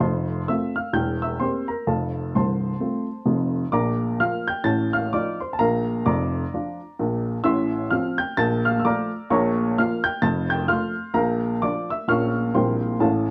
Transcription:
0.00 F1 F2 C5 A5 C6
0.48 A3 C4 F4 E5 E6
0.76 F5 F6
0.93 E1 E2 G5 G6
1.22 E5 E6
1.39 A#3 C4 G4 C5 C6
1.68 A#4 A#5
1.87 F1 F2 A4 F5 A5
2.35 C1 C2 C5 A5 C6
2.81 A3 C4 F4
3.26 F1 F2
3.72 A#1 A#2 D5 A#5 D6
4.20 F3 A#3 F4 F5 F6
4.48 G5 G6
4.64 A1 A2 A5 A6
4.94 F5 F6
5.13 F3 D#4 F4 D5 D6
5.40 C5 C6
5.53 A5
5.59 A#1 A#2 A#4 F5 A#5
6.06 F1 F2 D5 A#5 D6
6.54 F3 D4 F4
6.99 A#1 A#2
7.43 A1 A2 E5 C6 E6
7.90 F3 C4 F4 F5 F6
8.18 G5 G6
8.37 A#1 A#2 A5 A6
8.65 F5 F6
8.80 E6
8.85 F3 A3 F4 D5 A#5 D6
9.30 A#1 A#2 C#5 A#5 C#6
9.78 F3 A#3 F4 F5 F6
10.04 G5 G6
10.22 F1 F2 A5 A6
10.50 G5 G6
10.68 F3 A3 F4 F5 C6 F6
11.14 A#1 A#2 A#4 F5 A#5
11.62 F3 D4 F4 D5 D6
11.91 E5 E6
12.08 A#1 A#2 F3 C#4 F4 F5 C#6 F6
12.54 A#1 A#2 G3 C4 E4 C5 G5 C6
13.01 A1 A2 A4 F5 A5

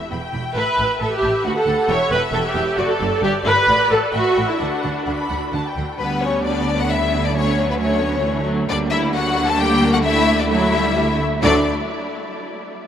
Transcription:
0.12 E1 E2 G5 B5
0.34 E1 E2 B5
0.55 A1 A2 B4 E5 A5
0.77 A1 A2 A5
0.99 A1 A2 A4 E5 A5
1.12 G4
1.22 A1 A2 A5
1.44 D2 F#4 F#5
1.57 A4
1.66 D2 F#5
1.89 E1 E2 C#5 E5 G5
2.11 E1 E2 B4 G5
2.33 E1 E2 A4 G5
2.45 G4
2.55 E1 E2 G5
2.78 F#1 F#2 F#4 D5
2.89 A4
3.00 F#1 F#2 D5
3.22 G1 G2 G4 E5
3.44 G1 G2 B4 E5
3.67 A1 A2 D5 F#5
3.89 A1 A2 A4 F#5
4.13 A1 A2 F#4 E5 G5
4.37 A1 A2 G5
4.49 E4
4.59 D2 D3 D4 F#5
4.83 D2 D3 F#5
5.06 D2 D3 F#5 B5
5.30 D2 D3 F#5
5.53 D2 D3 F#5 A5
5.66 G5
5.76 D2 D3 F#5
5.99 D2 D3 G3 B3 B4
6.22 C#4 C#5
6.44 D4 D5
6.79 F#4 F#5
6.89 G3 E4 E5
7.24 D4 D5
7.34 F#3 A3 C#4 C#5
7.67 B3 B4
7.78 A3 C#4 C#5
8.00 B3
8.23 E3 A3
8.46 F#3
8.68 D2 D3 G3 A#3 D4 D5
8.91 E4 E5
9.13 F#4 F#5
9.47 A4 A5
9.58 G3 A#3 G4 G5
9.92 F#4 F#5
10.03 A3 E4 E5
10.37 D4 D5
10.49 F#3 A3 E4 E5
10.73 G3
10.96 G3 A3
11.43 D2 D3 F#3 A3 D4 D5

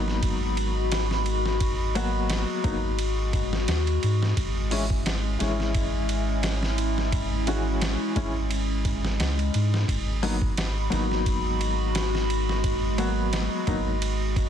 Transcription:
Already playing: G#1 F#3 G#3 A#3 B3 D#4 F#4 B5
0.08 snare
0.22 kick, ride
0.57 ride
0.92 snare, ride
1.11 snare
1.26 ride
1.46 snare
1.60 kick, ride
1.95 F#3 A#3 B3 F#4, ride
2.30 snare, ride
2.64 G#1 F#3 A#3 B3 D#4, kick, ride
2.99 ride
3.33 kick, ride
3.53 snare
3.68 D#2, snare, ride
3.87 ride
4.03 G#2, ride
4.22 snare
4.36 G#1 C#4 E4, kick, ride
4.71 E3 G#3 C#4 E4, open hi-hat
4.90 kick
5.06 snare, ride
5.39 G#1 E3 G#3 C#4 E4, snare, ride
5.60 snare
5.75 kick, ride
6.09 ride
6.43 snare, ride
6.63 snare
6.78 ride
6.98 snare
7.12 kick, ride
7.47 E3 G#3 C#4 F#4, ride
7.81 snare, ride
8.16 G#1 E3 G#3 C#4 E4, kick, ride
8.51 ride
8.85 kick, ride
9.05 snare
9.20 C#2, snare, ride
9.39 ride
9.54 G#2, ride
9.74 snare
9.88 G#1 G#3 F#4 B5, kick, ride
10.23 F#3 A#3 B3 D#4, open hi-hat
10.42 kick
10.57 snare, ride
10.90 G#1 F#3 A#3 B3 D#4, snare, ride
11.11 snare
11.26 kick, ride
11.61 ride
11.95 snare, ride
12.15 snare
12.30 ride
12.49 snare
12.64 kick, ride
12.98 F#3 A#3 B3 F#4, ride
13.33 snare, ride
13.67 G#1 F#3 A#3 B3 D#4, kick, ride
14.02 ride
14.36 kick, ride

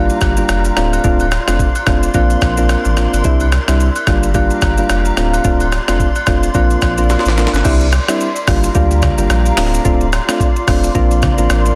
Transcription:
Already playing: G3 A#3 D4 F4 G4 F5 A#5
0.10 shaker
0.21 G1, kick, cross-stick, high agogo, shaker
0.37 G3 A#3 D4 F4, shaker
0.49 F1, cross-stick, high agogo, shaker
0.65 shaker
0.76 D1 A3 C4 D4 F4 D5 C6, cross-stick, shaker
0.93 high agogo, shaker
1.04 D1 A3 C4 D4 F4, kick, shaker
1.20 high agogo, shaker
1.32 cross-stick, shaker
1.48 F1 A3 C4 D4 F4, cross-stick, high agogo, shaker
1.59 kick, shaker
1.75 high agogo, shaker
1.87 F1 A3 C4 D4 F4, kick, cross-stick, shaker
2.03 shaker
2.14 A#1 A#3 C4 D4 F4 A#4, kick, high agogo, shaker
2.30 shaker
2.41 A#1, kick, cross-stick, high agogo, shaker
2.57 A#3 C4 D4 F4, shaker
2.69 cross-stick, high agogo, shaker
2.85 A1, shaker
2.97 A#3 C4 D4 F4, cross-stick, shaker
3.13 G1, high agogo, shaker
3.24 C2 G3 C4 D4 E4, kick, shaker
3.40 high agogo, shaker
3.52 cross-stick, shaker
3.68 C2 G3 C4 D4 E4, cross-stick, high agogo, shaker
3.81 shaker
3.96 high agogo, shaker
4.07 G1 G3 A#3 D4 F4 G4 F5 A#5, kick, cross-stick, shaker
4.23 shaker
4.34 G3 A#3 D4 F4, kick, high agogo, shaker
4.51 shaker
4.62 G1, kick, cross-stick, high agogo, shaker
4.78 G3 A#3 D4 F4, shaker
4.90 F1, cross-stick, high agogo, shaker
5.06 shaker
5.17 D1 A3 C4 D4 F4 D5 C6, cross-stick, shaker
5.33 high agogo, shaker
5.44 D1 A3 C4 D4 F4, kick, shaker
5.60 high agogo, shaker
5.72 cross-stick, shaker
5.88 F1 A3 C4 D4 F4, cross-stick, high agogo, shaker
6.00 kick, shaker
6.16 high agogo, shaker
6.27 F1 A3 C4 D4 F4, kick, cross-stick, shaker
6.43 shaker
6.55 A#1 A#3 C4 D4 F4 A#4, kick, high agogo, shaker
6.71 shaker
6.82 A#1, kick, cross-stick, high agogo, shaker
6.98 A#3 C4 D4 F4, shaker
7.10 snare, high agogo, shaker
7.19 snare
7.26 A1, snare, shaker
7.37 A#3 C4 D4 F4, snare, shaker
7.47 snare
7.53 G1, snare, high agogo, shaker
7.64 C2 G3 C4 D4 E4 D5 C6, kick, crash, shaker
7.81 shaker
7.93 cross-stick, shaker
8.08 G3 C4 D4 E4, cross-stick, shaker
8.21 shaker
8.36 shaker
8.47 G1 G3 A#3 D4 F4 G4 F5 A#5, kick, cross-stick, open hi-hat, shaker
8.64 shaker
8.75 D2 G3 A#3 D4 F4, kick, shaker
8.91 shaker
9.02 kick, cross-stick, mid tom, shaker
9.18 G1 G3 A#3 D4 F4, shaker
9.30 A#1, cross-stick, shaker
9.46 shaker
9.57 D1 A3 C4 D4 F4 D5 C6, cross-stick, clap, open hi-hat, shaker
9.75 shaker
9.85 D1 A3 C4 D4 F4, kick, shaker
10.01 shaker
10.13 cross-stick, shaker
10.28 A3 C4 D4 F4, cross-stick, shaker
10.40 kick, shaker
10.56 shaker
10.67 F1 A3 C4 D4 F4, kick, cross-stick, open hi-hat, shaker
10.84 shaker
10.95 A#1 A#3 C4 D4 F4 A#4, kick, shaker
11.11 shaker
11.22 kick, cross-stick, mid tom, shaker
11.38 A1 A#3 C4 D4 F4, shaker
11.50 A1, cross-stick, shaker
11.66 shaker

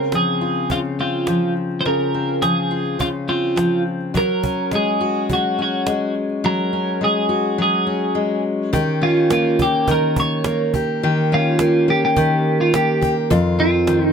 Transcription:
Already playing: C#3 G#3 C4 A#4
0.12 F3 G#4, cajon slap
0.27 cajon slap
0.41 F4, cajon slap
0.56 cajon slap
0.70 C#3 F4, cajon bass
0.99 C4 F4
1.13 cajon slap
1.27 F3, cajon slap
1.57 cajon slap
1.71 cajon slap
1.81 C5
1.85 C#3 A#4, cajon slap
2.00 cajon slap
2.14 C4
2.28 cajon slap
2.42 F3 G#4, cajon slap
2.58 cajon slap
2.71 F4, cajon slap
2.86 cajon slap
2.99 C#3 F4, cajon bass
3.28 C4 F4
3.44 cajon slap
3.56 F3, cajon slap
3.71 cajon slap
3.87 cajon slap
4.01 cajon slap
4.14 F#3 A#4, cajon bass
4.30 cajon slap
4.43 C#4, cajon bass
4.58 cajon slap
4.71 G#3 G#4, cajon slap
4.86 cajon slap
5.01 F#4, cajon slap
5.15 cajon slap
5.29 F#3 F#4, cajon bass
5.45 cajon slap
5.59 C#4 F#4
5.73 cajon slap
5.86 G#3, cajon slap
6.01 cajon slap
6.16 cajon slap
6.30 cajon slap
6.44 F#3 A#4
6.73 C#4
7.01 G#3 G#4
7.29 F#4
7.58 F#3 G#4
7.87 C#4
8.15 G#3
8.73 D#3 G4, cajon bass
9.01 C#4 F4
9.17 cajon slap
9.30 A#3 F4, cajon slap
9.45 cajon slap
9.59 A#3 G4, cajon bass
9.73 cajon slap
9.88 D#3 A#4, cajon bass
10.02 cajon slap
10.16 C#5, cajon bass
10.44 A#3, cajon slap
10.58 cajon slap
10.74 G4, cajon bass
10.88 cajon slap
11.02 D#3 G4, cajon slap
11.17 cajon slap
11.32 C#4 F4
11.46 cajon slap
11.59 A#3, cajon slap
11.74 cajon slap
11.88 A#3 G4, cajon slap
12.02 G4, cajon slap
12.17 D#3, cajon bass
12.60 F4, cajon slap
12.74 A#3 G4, cajon slap
13.01 G4, cajon bass
13.30 F2 F4, cajon bass
13.45 cajon slap
13.59 C4 F4
13.74 cajon slap
13.87 D#3, cajon slap
14.02 D#4, cajon slap

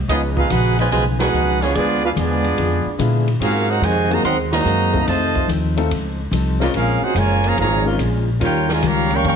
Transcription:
0.08 C#2 C#3 F3 G#3 B3 C#4 D#4 F4 G#4 B4 D#5, ride
0.36 G#3 B3 D#4 F4 G#4 B4 F5, kick
0.50 A#1 C#3 F3 B3 D#4 F#4 G#4 B4 F#5, hi-hat pedal, ride
0.78 B2 F3 G#3 C#4 D#4 F4 B4 D#5 G#5, ride
0.91 B1 B2 C#3 F3 G#3 B3 D#4 F4 B4 D#5 G#5, ride
1.19 G#3 B3 D#4 F#4 G#4 B4 F#5, snare, ride
1.32 C#2 C#3 F3 B3 D#4, hi-hat pedal
1.61 F3 G#3 B3 C#4 F4 G#4 C#5, snare, ride
1.73 D2 D3 F3 G#3 B3 D4 F4 G#4 D5, ride
2.04 G#3 B3 D4 F4 G#4 B4 F5
2.15 E2 D3 G#3 B3 D4 F4 G#4 D5, hi-hat pedal, ride
2.44 ride
2.56 F2 D3 G#3 B3 F4, ride
2.85 muted upright bass stroke
2.98 A#2 D3 G#3 B3 D4 E4 F4 G#4, hi-hat pedal, ride
3.28 ride
3.40 G#2 F#3 G#3 A#3 C4 C#4 F4 F#4 G#4 A#4 F5, ride
3.69 C4 D#4 F#4 A#4 C5 F#5
3.81 F2 C3 D#3 G#3 C4 F#4 A#4 C5 D#5 G#5, hi-hat pedal, ride
4.10 D#3 F#3 A#3 C4 D#4 F#4 G#4 C5 D#5 A#5, ride
4.23 D#2 D#3 F#3 G#3 C4 F#4 A#4 D#5 F#5 C6, ride
4.52 D#3 F#3 A#3 F#4 C5 D#5 A#5, snare, ride
4.65 F#2 G#3 C4 F#4 A#4, hi-hat pedal
4.93 A3 C4 D#4 F4 A4, kick
5.06 F2 C3 D#3 F3 A3 C4 D#4 F4 A4 C5 D#5 A5, snare, ride
5.35 kick
5.47 D#2 F3 C4 D#4 A4, hi-hat pedal, ride
5.77 A3 C4 D#4 F4 A4, ride
5.88 C#2 F3 C4 D#4 A4, ride
6.31 C2 F3 C4 D#4 A4, hi-hat pedal, ride
6.60 C#3 G#3 A#3 C4 C#4 F4 A#4, snare
6.73 A#1 A#2 G#3 C#4 F4 G#4 A#4 F5, ride
7.01 D#4 F#4 G#4 C5 F#5, muted upright bass stroke
7.14 F#1 A#2 C#3 F3 G#3 C#4 F4 A#4 C#5 G#5, hi-hat pedal, ride
7.44 C#3 F3 A#3 G#4 C#5 F5 A#5, ride
7.56 G#1 A#2 C#3 F3 G#3 A#3 C#4 F4 G#4 C#5 F5 A#5, ride
7.84 C#3 G#3 A#3 C4 C#4 F4 A#4
7.98 A#1 A#2 G#3 C#4 F4, hi-hat pedal, ride
8.39 D#2 D#3 G3 A#3 C#4 F4 G4, ride
8.44 F4 A#4 C#5 G5
8.69 G#3 F4 A#4, snare
8.73 C#5 G#5
8.82 C#2 C#3 D#3 G3 A#3 C#4 F4, hi-hat pedal, ride
8.86 G4 C#5 F5 A#5
9.10 G3 A#3 C#4 G5, ride
9.14 A#4 F5 C#6
9.23 F2 D#3 G3 A#3 C#4 F4, ride
9.27 A#4 F5 G5 C#6

